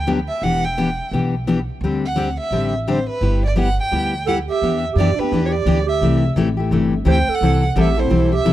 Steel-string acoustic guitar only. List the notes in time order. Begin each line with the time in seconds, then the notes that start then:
0.07 D3 F#3 B3 D4 G4
0.43 E3 B3 D4 G4
0.77 E3 B3 D4 G4
1.13 E3 B3 D4 G4
1.47 E3 B3 D4 G4
1.84 D3 G3 C4 D4 G4
2.16 D3 G3 C4 D4 G4
2.52 D3 G3 C4 D4 G4
2.88 D3 G3 C4 D4 G4
3.22 G3 B3 E4 G4
3.56 G3 B3 E4 G4
3.92 G3 B3 E4 G4
4.27 G3 B3 E4 G4
4.63 E3 B3 D4 G4
4.98 E3 B3 D4 G4
5.20 B3 D4 G4
5.32 E3 B3 D4 G4
5.66 E3 B3 D4 G4
6.02 C3 E3 A3 E4 G4
6.36 C3 E3 A3 E4 G4
6.57 A3 E4 G4
6.72 C3 E3 A3 E4 G4
7.05 C3 E3 A3 E4 G4
7.42 C3 E3 G3 C4 E4 A4
7.76 C3 E3 G3 C4 E4 A4
7.97 G3 C4 E4 A4
8.10 C3 E3 G3 C4 E4 A4
8.45 C3 E3 G3 C4 E4 A4